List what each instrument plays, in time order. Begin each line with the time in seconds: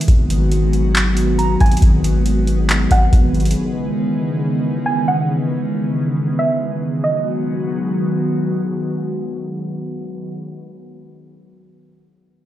0.01 closed hi-hat
0.08 808-style bass G#1, analog synth pad D#3 F#3 G#3 B3 F#4, kick, closed hi-hat
0.30 closed hi-hat
0.52 closed hi-hat
0.73 closed hi-hat
0.95 clap, closed hi-hat
1.17 closed hi-hat
1.38 synth pluck A#5, closed hi-hat
1.60 808-style bass G#1, synth pluck G#5, kick, closed hi-hat
1.66 closed hi-hat
1.72 closed hi-hat
1.77 closed hi-hat
1.82 808-style bass G#1, kick, closed hi-hat
2.04 closed hi-hat
2.26 closed hi-hat
2.47 closed hi-hat
2.69 clap, closed hi-hat
2.91 808-style bass G#1, synth pluck F#5, kick, closed hi-hat
3.13 808-style bass G#1, kick, closed hi-hat
3.34 closed hi-hat
3.40 closed hi-hat
3.45 closed hi-hat
3.51 closed hi-hat
3.56 analog synth pad C#3 D#3 E3
4.86 synth pluck G#5
5.08 synth pluck F#5
6.39 synth pluck E5
7.04 analog synth pad D#3 F#3 G#3 B3 F#4, synth pluck D#5